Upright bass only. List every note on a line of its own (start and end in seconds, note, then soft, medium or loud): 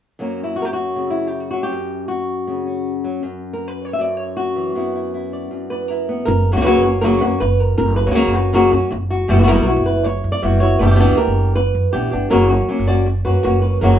6.27 6.53 F#1 loud
6.56 6.73 C#2 medium
6.75 7.17 F#1 medium
7.22 7.31 F#2 medium
7.41 7.75 F#1 medium
7.79 8.04 F#1 medium
8.07 8.24 C#2 medium
8.26 8.68 F#1 medium
8.73 8.81 F#2 medium
8.92 9.26 F#1 medium
9.30 9.55 F#1 loud
9.58 9.75 B1 medium
9.76 10.19 F#1 medium
10.24 10.33 F#2 medium
10.43 10.77 F#1 medium
10.80 11.06 F#1 loud
11.27 11.70 F#1 medium
11.75 11.83 F#2 medium
11.94 12.11 A#1 medium
12.13 12.30 G1 medium
12.32 12.57 F#1 medium
12.79 13.21 F#1 medium
13.26 13.34 F#2 medium
13.45 13.79 F#1 medium
13.83 13.99 F#1 loud